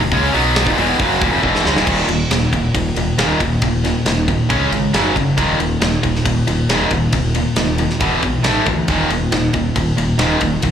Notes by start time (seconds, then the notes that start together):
0.01 D#1 D#2 A#2
0.12 C#2 C#3 G#3 C#4, kick, open hi-hat
0.33 B1 B2 F#3 B3, open hi-hat
0.56 snare, open hi-hat
0.66 D#1 D#2 A#2, kick
0.77 E1 E2 B2 E3, open hi-hat
0.99 F#1 F#2 C#3 F#3, kick, open hi-hat
1.21 D#1 D#2 A#2, kick, open hi-hat
1.31 F#1 F#2 C#3
1.42 E1 E2 B2 E3, kick
1.55 snare
1.65 C#2 C#3 G#3, snare
1.75 D#1 D#2 A#2, snare
1.86 D#1 D#2 A#2 D#3, kick, crash
2.08 D#1 D#2 A#2, ride
2.30 D#1 D#2 A#2, snare, ride
2.53 D#1 D#2 A#2, kick, ride
2.75 D#1 D#2 A#2, kick, ride
2.95 D#1 D#2 A#2, ride
3.18 D#1 D#2 A#2 D#3, snare, ride
3.40 D#1 D#2 A#2, kick, ride
3.62 D#1 D#2 A#2, kick, ride
3.85 D#2 A#2, snare, ride
4.05 D#1 D#2 A#2, snare, ride
4.28 D#2 A#2, kick, ride
4.50 C#2 C#3 G#3 C#4, kick, ride
4.71 G#1 C#3 G#3, ride
4.94 F#1 F#2 C#3 F#3, snare, ride
5.16 F#1 F#2 C#3, kick, ride
5.37 D#1 D#2 A#2 D#3, kick, ride
5.59 D#1 D#2 A#2, ride
5.82 D#1 D#2 A#2, snare, ride
6.03 D#1 D#2 A#2, kick, ride
6.15 snare
6.25 D#1 D#2 A#2, kick, ride
6.47 D#1 D#2 A#2, ride
6.69 D#1 D#2 A#2 D#3, snare, ride
6.91 D#1 D#2 A#2, kick, ride
7.13 D#1 D#2 A#2, kick, ride
7.35 D#2 A#2, ride
7.56 D#1 D#2 A#2, snare, ride
7.78 D#2 A#2, ride
7.90 snare
8.00 E1 E2 B2 E3, kick, ride
8.23 B1 E2 B2, kick, ride
8.44 A1 A2 E3 A3, snare, ride
8.66 D2 A2 E3, kick, ride
8.88 D#1 D#2 A#2 D#3, kick, ride
9.10 D#1 D#2 A#2, ride
9.32 D#1 D#2 A#2, snare, ride
9.53 D#1 D#2 A#2, kick, ride
9.76 D#1 D#2 A#2, kick, ride
9.97 D#1 D#2 A#2, ride
10.19 D#1 D#2 A#2 D#3, snare, ride
10.41 D#1 D#2 A#2, kick, ride
10.62 D#1 D#2 A#2, kick, ride